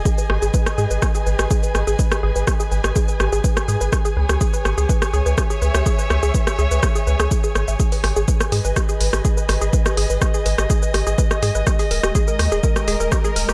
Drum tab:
HH |----------------|----------------|----------------|----------------|
SH |xx-xxxxxxxxxxxxx|xx-xxxxxxxxxxxxx|xx-xxxxxxxxxxxxx|xxxxxxxxxxxxxxxx|
SD |--r--r--r--r--r-|-r--r--r--r--r--|r--r--r--r--r--r|--r--r--r--r--r-|
BD |o---o---o---o---|o---o---o---o---|o---o---o---o---|o---o---o---o---|

HH |-oo---o---o---o-|--o---o---o---o-|-oo---o---o---o-|
SH |xx-xxxxxxxxxxxxx|xx-xxxxxxxxxxxxx|xx-xxxxxxxxxxxxx|
SD |--r--r--r--r--r-|-r--r--r--r--r--|r--r--r--r--r--r|
BD |o---o---o---o---|o---o---o---o---|o---o---o---o---|